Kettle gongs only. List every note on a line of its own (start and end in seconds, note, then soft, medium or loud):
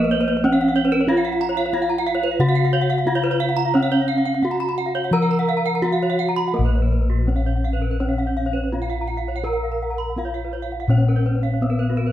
0.00 1.69 F3 medium
0.00 0.40 F4 medium
0.44 0.52 B3 soft
1.07 3.02 F4 medium
1.73 1.81 B3 soft
2.39 4.39 C#3 medium
3.06 3.14 B3 soft
3.75 5.79 C#4 medium
4.42 4.50 B3 soft
5.11 7.23 F3 medium
5.82 5.90 B3 soft
6.54 8.67 A#4 medium
6.59 10.87 A#1 medium
7.28 7.36 B3 soft
8.73 8.81 B3 soft
9.44 11.57 A#4 medium
10.16 10.24 B3 soft
10.88 12.12 A#2 medium
11.61 11.69 B3 soft